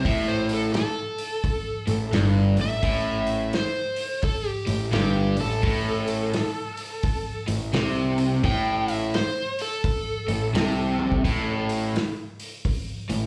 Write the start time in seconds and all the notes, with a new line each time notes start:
0.05 A1 A2 E5, kick, open hi-hat
0.28 C5
0.49 open hi-hat
0.54 A4
0.74 A4, snare, open hi-hat
1.18 open hi-hat
1.44 kick, open hi-hat
1.87 A1 A2, open hi-hat
2.13 G1 G2, snare, open hi-hat
2.57 A1 A2, open hi-hat
2.61 E5
2.83 A1 A2, kick, open hi-hat
3.27 open hi-hat
3.53 C5, snare, open hi-hat
3.96 open hi-hat
4.22 A4, kick, open hi-hat
4.47 G4
4.67 A1 A2, open hi-hat
4.92 G1 G2 G4, snare, open hi-hat
5.36 A1 A2 A4, open hi-hat
5.63 A1 A2, kick, open hi-hat
6.07 open hi-hat
6.33 snare, open hi-hat
6.77 open hi-hat
7.03 kick, open hi-hat
7.48 A1 A2, open hi-hat
7.73 C2 C3, snare, open hi-hat
8.18 open hi-hat
8.44 A1 A2 G5, kick, open hi-hat
8.88 E5, open hi-hat
9.14 C5, snare, open hi-hat
9.59 A4, open hi-hat
9.84 kick, open hi-hat
10.28 A1 A2, open hi-hat
10.54 C2 C3, snare, open hi-hat
10.99 high tom
11.12 kick
11.24 A1 A2, kick, open hi-hat
11.69 open hi-hat
11.96 snare, open hi-hat
12.40 open hi-hat
12.65 kick, open hi-hat
13.09 A1 A2, open hi-hat